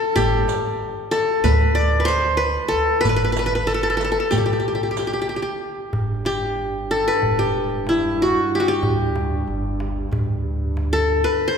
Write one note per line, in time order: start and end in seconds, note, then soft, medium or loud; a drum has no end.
0.00 1.01 A4 medium
0.16 0.44 G1 medium
0.16 1.41 G4 medium
0.16 riq medium
0.16 darbuka dum medium
0.48 riq medium
0.48 darbuka tek medium
0.80 darbuka ka soft
1.11 2.28 A4 medium
1.11 riq soft
1.11 darbuka tek medium
1.44 2.56 D2 medium
1.44 1.99 B4 medium
1.44 riq medium
1.44 darbuka dum medium
1.75 2.73 D5 medium
2.00 2.11 B4 medium
2.05 2.43 C5 loud
2.05 riq medium
2.05 darbuka tek medium
2.37 3.00 B4 medium
2.68 3.00 D2 medium
2.68 3.67 A4 medium
3.01 4.16 G1 medium
3.01 3.09 B4 medium
3.05 riq medium
3.05 darbuka dum loud
3.09 3.16 B4 medium
3.16 3.24 B4 medium
3.24 3.32 B4 medium
3.32 3.38 B4 medium
3.37 3.46 B4 medium
3.37 riq medium
3.37 darbuka tek medium
3.46 3.55 B4 medium
3.55 4.65 B4 medium
3.67 3.74 A4 medium
3.67 riq soft
3.67 darbuka ka soft
3.74 3.83 A4 medium
3.83 3.89 A4 medium
3.90 3.97 A4 medium
3.97 4.04 A4 medium
3.97 riq soft
3.97 darbuka tek medium
4.04 4.11 A4 medium
4.12 4.19 A4 medium
4.20 5.37 A4 medium
4.31 5.45 B1 medium
4.31 4.37 G4 medium
4.31 riq medium
4.31 darbuka dum medium
4.38 4.45 G4 soft
4.46 4.52 G4 medium
4.53 4.59 G4 soft
4.60 4.67 G4 soft
4.68 4.74 G4 soft
4.75 4.83 G4 soft
4.83 4.91 G4 soft
4.91 4.98 G4 soft
4.97 5.07 G4 soft
4.97 riq soft
4.97 darbuka tek medium
5.07 5.13 G4 soft
5.13 5.21 G4 soft
5.22 5.29 G4 medium
5.29 5.36 G4 soft
5.36 5.42 G4 soft
5.42 6.26 G4 medium
5.92 7.05 G1 medium
5.92 11.58 G2 medium
5.92 darbuka dum medium
6.25 7.38 G4 medium
6.25 darbuka tek medium
6.58 darbuka ka soft
6.91 8.08 A4 medium
7.08 8.17 B4 medium
7.22 8.34 E1 medium
7.22 darbuka dum medium
7.39 8.28 G4 medium
7.87 9.28 E4 medium
7.87 darbuka tek medium
8.18 8.60 F#4 medium
8.18 darbuka ka soft
8.55 8.66 G4 medium
8.60 8.74 F#4 medium
8.68 9.97 G4 medium
8.83 9.39 D2 medium
8.83 darbuka dum loud
9.16 darbuka tek medium
9.47 10.03 G1 medium
9.47 darbuka ka soft
9.80 darbuka tek medium
10.11 11.24 D2 loud
10.11 darbuka dum medium
10.77 darbuka tek medium
10.93 11.58 A4 medium
11.09 darbuka ka soft
11.24 11.54 B4 medium
11.48 11.58 C5 medium